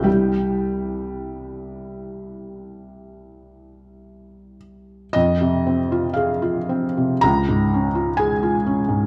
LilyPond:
\new Staff \with { instrumentName = "Felt piano" } { \time 4/4 \key f \minor \tempo 4 = 53 << { g2.~ g8 r8 | ees''4 f''4 bes''4 aes''4 | } \\ { <c, e' g' g''>1 | f,16 c16 c'16 f'16 aes'16 f'16 c'16 c16 des,16 aes,16 des'16 f'16 aes'16 f'16 des'16 aes,16 | } >> }